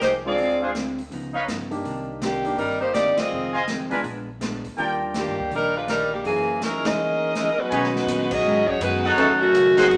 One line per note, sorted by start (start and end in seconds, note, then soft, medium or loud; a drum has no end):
0.01 0.35 C2 medium
0.01 0.26 F3 medium
0.01 0.12 G#3 medium
0.01 0.26 A#3 medium
0.01 0.12 D#4 medium
0.01 0.26 D#4 medium
0.01 0.12 G4 medium
0.01 0.27 G#4 medium
0.01 0.12 C5 medium
0.01 snare medium
0.01 closed hi-hat soft
0.25 0.72 G#3 medium
0.25 0.72 C4 soft
0.25 0.60 C4 medium
0.25 0.72 D4 soft
0.25 0.72 F4 medium
0.25 0.59 F4 medium
0.25 0.60 G#4 medium
0.25 0.60 D5 medium
0.37 1.07 D2 medium
0.37 0.62 D3 soft
0.37 0.63 G#3 soft
0.37 0.64 C4 medium
0.37 open hi-hat soft
0.42 0.64 F4 soft
0.61 0.70 D4 medium
0.61 0.70 G#4 medium
0.61 0.70 C5 medium
0.61 0.70 F5 medium
0.75 0.99 D3 medium
0.75 0.99 G#3 medium
0.75 1.00 C4 medium
0.75 1.00 F4 medium
0.75 snare medium
0.75 closed hi-hat medium
0.99 open hi-hat soft
1.10 1.45 C#2 medium
1.10 1.35 C#3 soft
1.10 1.36 F3 medium
1.10 1.36 B3 medium
1.10 1.37 D#4 medium
1.10 open hi-hat soft
1.34 1.43 D#4 medium
1.34 1.43 B4 medium
1.34 1.43 C#5 medium
1.34 1.44 F5 medium
1.47 1.82 G2 medium
1.47 1.72 C#3 medium
1.47 1.72 F3 medium
1.47 1.73 B3 medium
1.47 1.73 D#4 medium
1.47 snare medium
1.47 closed hi-hat soft
1.71 2.18 A#3 medium
1.71 2.18 D4 medium
1.71 2.18 D#4 soft
1.71 2.19 G4 medium
1.71 open hi-hat soft
1.84 2.54 C2 medium
1.84 2.09 C3 medium
1.84 2.09 D#3 medium
1.84 2.10 A#3 medium
1.84 2.10 D4 medium
1.84 open hi-hat soft
2.21 2.46 C3 medium
2.21 2.46 D#3 medium
2.21 2.56 D#3 medium
2.21 2.46 A#3 medium
2.21 2.56 A#3 medium
2.21 2.56 D4 medium
2.21 2.47 D4 medium
2.21 2.56 G4 medium
2.21 snare medium
2.21 closed hi-hat soft
2.44 2.56 A#3 medium
2.44 2.56 D4 soft
2.44 2.57 D#4 soft
2.44 2.57 G4 medium
2.44 open hi-hat soft
2.57 3.13 G1 medium
2.57 2.82 C3 soft
2.57 2.83 D#3 soft
2.57 2.79 G3 medium
2.57 2.83 A#3 soft
2.57 2.79 D4 medium
2.57 2.79 D#4 medium
2.57 2.79 A#4 medium
2.57 open hi-hat soft
2.61 2.84 D4 soft
2.80 2.92 A#3 medium
2.80 2.92 D#4 medium
2.80 2.92 G4 medium
2.80 2.93 C5 medium
2.93 3.19 C3 medium
2.93 3.19 D#3 medium
2.93 3.15 A#3 medium
2.93 3.20 A#3 medium
2.93 3.15 D#4 medium
2.93 3.15 G4 medium
2.93 3.15 D5 medium
2.93 snare medium
2.93 closed hi-hat soft
2.97 3.20 D4 medium
3.17 3.54 C4 medium
3.17 3.54 F4 medium
3.17 3.54 G#4 medium
3.17 3.54 D#5 medium
3.17 muted upright bass stroke soft
3.17 snare medium
3.17 ride medium
3.30 4.00 F1 medium
3.30 3.55 F2 soft
3.30 3.56 D#3 soft
3.30 3.57 G#3 soft
3.34 3.57 C4 medium
3.53 3.63 F4 medium
3.53 3.63 C5 medium
3.53 3.63 D#5 medium
3.53 3.63 G#5 medium
3.68 3.92 F2 medium
3.68 3.93 D#3 medium
3.68 3.93 G#3 medium
3.68 3.94 C4 medium
3.68 snare medium
3.68 closed hi-hat medium
3.91 4.03 G#3 soft
3.91 4.03 B3 soft
3.91 4.00 D4 medium
3.91 4.03 D4 soft
3.91 4.03 F4 medium
3.91 4.00 A#4 medium
3.91 4.00 B4 medium
3.91 4.00 G#5 medium
3.91 open hi-hat soft
4.03 4.60 A#1 medium
4.03 4.28 A#2 soft
4.03 4.29 G#3 soft
4.03 4.30 B3 soft
4.03 4.30 D4 medium
4.03 open hi-hat soft
4.40 4.65 A#2 medium
4.40 4.66 G#3 medium
4.40 4.66 B3 medium
4.40 4.66 D4 medium
4.40 snare medium
4.40 closed hi-hat soft
4.64 4.76 D2 medium
4.64 open hi-hat soft
4.77 5.23 D#2 medium
4.77 5.02 D#3 medium
4.77 5.03 G3 medium
4.77 5.33 G3 soft
4.77 5.34 A#3 soft
4.77 5.03 A#3 medium
4.77 5.34 D4 soft
4.77 5.04 D4 medium
4.77 5.34 F4 soft
4.77 5.33 A#4 medium
4.77 5.33 D5 medium
4.77 5.33 G5 medium
4.77 open hi-hat soft
5.14 5.39 D#3 medium
5.14 5.51 D#3 medium
5.14 5.39 G3 medium
5.14 5.40 A#3 medium
5.14 5.51 A#3 medium
5.14 5.40 D4 medium
5.14 5.50 D4 medium
5.14 5.50 G4 medium
5.14 snare medium
5.14 closed hi-hat medium
5.27 5.38 G2 medium
5.39 5.50 D2 medium
5.50 6.20 A#1 medium
5.50 5.76 D#3 soft
5.50 5.76 G3 soft
5.50 5.77 A#3 soft
5.50 open hi-hat soft
5.54 5.76 G3 medium
5.54 5.75 D4 medium
5.54 5.77 D4 medium
5.54 5.76 D#4 medium
5.54 5.76 A#4 medium
5.76 5.88 G#3 medium
5.76 5.88 D4 medium
5.76 5.88 F4 medium
5.76 5.88 B4 medium
5.87 6.12 D#3 medium
5.87 6.12 G3 medium
5.87 6.10 G3 medium
5.87 6.13 A#3 medium
5.87 6.10 D4 medium
5.87 6.13 D4 medium
5.87 6.10 D#4 medium
5.87 6.10 A#4 medium
5.87 snare medium
5.87 closed hi-hat soft
6.13 6.25 D#3 medium
6.13 6.24 A#3 medium
6.13 6.24 D4 medium
6.13 6.25 G4 medium
6.24 6.80 F#1 medium
6.24 6.49 F#2 soft
6.24 6.49 E3 medium
6.24 6.59 E3 medium
6.24 6.59 A#3 medium
6.24 6.50 A#3 soft
6.24 6.59 C#4 medium
6.24 6.50 D#4 soft
6.24 6.59 G#4 medium
6.24 open hi-hat soft
6.61 6.86 F#2 medium
6.61 6.86 E3 medium
6.61 6.85 G#3 medium
6.61 6.87 A#3 medium
6.61 6.85 C#4 medium
6.61 6.87 D#4 medium
6.61 6.86 E4 medium
6.61 6.85 A#4 medium
6.61 snare medium
6.61 closed hi-hat medium
6.84 6.97 F1 medium
6.84 7.34 E3 medium
6.84 6.97 G#3 medium
6.84 7.33 A#3 medium
6.84 6.97 A#3 soft
6.84 7.35 C#4 medium
6.84 7.58 D#4 medium
6.84 6.97 D#4 soft
6.84 6.97 E4 medium
6.84 7.59 G#4 medium
6.84 7.35 A#4 medium
6.84 7.59 D#5 medium
6.84 snare medium
6.84 ride medium
7.34 7.48 C#3 medium
7.34 7.48 E3 medium
7.34 7.48 G#3 medium
7.34 7.47 A#3 medium
7.34 7.49 C#4 medium
7.34 7.49 E4 medium
7.34 7.49 A#4 medium
7.34 snare medium
7.34 closed hi-hat soft
7.52 7.59 A#4 medium
7.57 8.29 F#3 medium
7.57 8.29 G#3 medium
7.57 8.32 G#3 medium
7.57 8.31 B3 medium
7.57 8.32 D#4 medium
7.57 8.31 F#4 medium
7.57 8.31 B4 medium
7.70 7.95 B2 soft
7.70 8.06 B2 medium
7.70 7.96 D#3 soft
7.70 8.26 G#3 soft
7.70 7.97 G#3 soft
7.70 8.27 B3 soft
7.70 8.27 C#4 soft
7.70 7.97 C#4 medium
7.70 7.86 D#4 medium
7.70 8.27 D#4 soft
7.70 8.27 F#4 medium
7.70 7.86 B4 medium
7.70 7.86 C#5 medium
7.70 7.86 G#5 medium
7.70 ride medium
7.84 snare soft
7.96 snare soft
8.06 8.42 A#2 medium
8.06 8.32 B2 medium
8.06 8.33 D#3 medium
8.06 8.33 G#3 medium
8.06 hi-hat pedal medium
8.06 ride medium
8.11 8.34 C#4 medium
8.30 8.66 F#3 medium
8.30 8.66 G#3 medium
8.30 8.68 C#4 medium
8.30 8.67 D#4 medium
8.30 8.67 F#4 medium
8.30 8.68 G#4 medium
8.30 8.68 D#5 loud
8.30 kick medium
8.30 crash medium
8.43 8.65 G#2 medium
8.43 8.69 B2 soft
8.43 8.70 D#3 medium
8.43 8.70 G#3 soft
8.48 8.71 C#4 soft
8.67 8.80 F#3 medium
8.67 8.80 G#3 medium
8.67 8.81 G#3 medium
8.67 8.81 C#4 medium
8.67 8.81 D#4 medium
8.67 8.81 F#4 medium
8.67 8.81 C#5 medium
8.67 kick medium
8.80 9.16 F#2 medium
8.80 9.05 B2 medium
8.80 9.06 D#3 medium
8.80 9.15 F#3 medium
8.80 9.15 G#3 medium
8.80 9.16 G#3 medium
8.80 9.06 G#3 medium
8.80 9.15 B3 medium
8.80 9.07 C#4 medium
8.80 9.15 D#4 medium
8.80 9.15 F#4 medium
8.80 9.15 B4 medium
8.80 hi-hat pedal medium
8.80 ride medium
9.04 9.51 D#4 loud
9.04 9.51 A4 medium
9.04 9.51 C#5 medium
9.04 9.51 F#5 loud
9.17 9.52 D#2 medium
9.17 9.28 C#3 medium
9.17 9.42 D#3 soft
9.17 9.28 F#3 medium
9.17 9.38 F#3 medium
9.17 9.28 F#3 medium
9.17 9.38 A3 medium
9.17 9.28 A3 medium
9.17 9.43 A3 soft
9.17 9.38 C#4 medium
9.17 9.28 C#4 medium
9.17 9.28 D#4 medium
9.17 9.39 D#4 soft
9.17 9.39 F#4 medium
9.17 9.28 A4 medium
9.17 ride medium
9.21 9.44 C#4 medium
9.21 9.44 F#4 medium
9.41 9.88 A2 medium
9.41 9.87 C#3 medium
9.41 9.97 D#3 medium
9.41 9.97 F#3 medium
9.41 9.87 A3 medium
9.41 9.87 C#4 medium
9.41 9.97 F#4 loud
9.53 9.89 C#2 medium
9.53 9.78 D#3 medium
9.53 9.79 A3 medium
9.53 9.79 C#4 medium
9.53 9.80 F#4 medium
9.53 hi-hat pedal medium
9.53 ride medium
9.77 9.89 F#3 medium
9.77 9.89 A#3 medium
9.77 9.89 C4 medium
9.77 9.86 D#4 loud
9.77 9.89 D#4 medium
9.77 9.86 G#4 medium
9.77 9.89 G#4 medium
9.77 9.86 C5 medium
9.77 9.86 F#5 loud
9.77 snare medium
9.77 ride soft
9.90 9.97 G#1 medium
9.90 9.97 G#2 soft
9.90 9.97 F#3 medium
9.90 9.97 C4 medium
9.90 9.97 D#4 medium
9.90 ride medium